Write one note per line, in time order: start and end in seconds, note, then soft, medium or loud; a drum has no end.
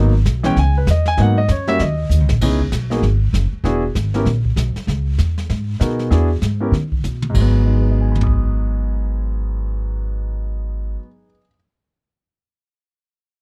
0.00 0.24 G#1 medium
0.00 0.11 F#3 medium
0.00 0.11 A#3 medium
0.00 0.11 B3 medium
0.00 0.11 D#4 medium
0.26 0.55 B1 medium
0.26 snare medium
0.26 hi-hat pedal soft
0.43 0.55 E3 medium
0.43 0.55 G#3 medium
0.43 0.55 B3 medium
0.43 0.55 C#4 medium
0.43 0.57 G5 medium
0.43 snare soft
0.56 0.86 C#2 medium
0.56 0.76 G#5 medium
0.56 brush sweep soft
0.56 snare soft
0.78 0.88 B4 medium
0.87 1.17 E2 medium
0.87 1.07 D#5 medium
0.87 snare medium
0.87 hi-hat pedal medium
1.06 1.18 G#5 loud
1.06 snare soft
1.17 1.48 G#2 medium
1.17 1.34 F#3 medium
1.17 1.35 A#3 medium
1.17 1.35 B3 medium
1.17 1.35 D#4 medium
1.17 brush sweep soft
1.17 snare soft
1.22 1.38 F#5 medium
1.38 1.49 D#5 medium
1.48 1.79 F#2 medium
1.48 1.68 C#5 medium
1.48 snare medium
1.48 hi-hat pedal medium
1.67 1.78 G3 medium
1.67 1.78 A#3 medium
1.67 1.79 C#4 medium
1.67 1.79 F#4 medium
1.67 1.80 E5 loud
1.67 snare soft
1.79 2.09 D#2 medium
1.79 2.32 D#5 medium
1.79 brush sweep soft
1.79 snare soft
2.09 2.20 D#2 medium
2.09 hi-hat pedal medium
2.20 2.30 C#2 medium
2.29 2.40 A#1 medium
2.29 snare medium
2.41 2.71 C#2 medium
2.41 2.58 B3 medium
2.41 2.58 C#4 medium
2.41 2.59 D#4 medium
2.41 2.59 E4 medium
2.41 2.59 G#4 medium
2.41 brush sweep soft
2.41 kick medium
2.41 snare soft
2.41 crash medium
2.60 kick soft
2.72 3.01 B1 medium
2.72 snare medium
2.72 hi-hat pedal medium
2.90 3.01 A#3 medium
2.90 3.01 B3 soft
2.90 3.02 D#4 soft
2.90 3.02 F#4 medium
2.90 3.02 G#4 medium
2.90 snare soft
3.02 3.32 G#1 medium
3.02 brush sweep soft
3.02 snare soft
3.33 3.51 F#1 medium
3.33 snare medium
3.33 hi-hat pedal medium
3.52 muted upright bass stroke soft
3.64 3.94 E1 medium
3.64 3.81 B3 medium
3.64 3.81 D4 medium
3.64 3.81 E4 medium
3.64 3.82 F#4 medium
3.64 3.81 G#4 medium
3.64 brush sweep soft
3.64 snare soft
3.95 4.25 G#1 medium
3.95 snare medium
3.95 hi-hat pedal soft
4.14 4.25 B3 medium
4.14 4.25 C#4 soft
4.14 4.25 E4 medium
4.14 4.25 G4 medium
4.14 4.26 A#4 medium
4.14 snare soft
4.25 4.56 A#1 medium
4.25 brush sweep soft
4.25 snare soft
4.45 kick soft
4.56 4.74 B1 medium
4.56 snare medium
4.56 hi-hat pedal medium
4.76 muted upright bass stroke soft
4.76 snare soft
4.87 5.17 C#2 medium
4.87 brush sweep soft
4.87 snare soft
5.18 5.48 E2 medium
5.18 snare medium
5.18 hi-hat pedal medium
5.38 snare soft
5.50 5.79 G#2 medium
5.50 brush sweep soft
5.50 snare soft
5.80 6.10 B2 medium
5.80 6.09 B3 medium
5.80 6.11 D#4 medium
5.80 6.09 F#4 soft
5.80 6.09 G#4 soft
5.80 6.11 A#4 medium
5.80 snare medium
5.80 hi-hat pedal medium
5.99 snare soft
6.10 6.41 E2 medium
6.10 6.28 B3 medium
6.10 6.28 D4 medium
6.10 6.28 E4 medium
6.10 6.28 F#4 medium
6.10 6.28 G#4 medium
6.10 brush sweep soft
6.10 snare soft
6.42 6.71 G#2 medium
6.42 snare soft
6.42 hi-hat pedal soft
6.60 6.71 B3 medium
6.60 6.72 C#4 soft
6.60 6.72 E4 soft
6.60 6.72 G4 soft
6.60 6.72 A#4 medium
6.72 7.02 D#3 medium
6.72 brush sweep soft
6.72 snare soft
6.92 kick medium
7.04 7.34 B2 medium
7.04 hi-hat pedal medium
7.04 mid tom soft
7.22 mid tom medium
7.30 10.94 G#2 medium
7.34 10.94 G#1 medium
7.34 10.98 F#3 medium
7.34 11.01 G#3 medium
7.34 kick medium
7.34 crash medium
7.41 11.05 B3 medium
7.66 11.26 D#4 soft
7.73 11.31 G#4 soft
7.82 11.35 B4 soft
7.91 11.40 D#5 soft
8.01 11.45 G#5 soft
8.12 11.50 B5 soft
8.12 mid tom soft
8.21 11.56 D#6 soft
8.21 floor tom medium
8.27 kick medium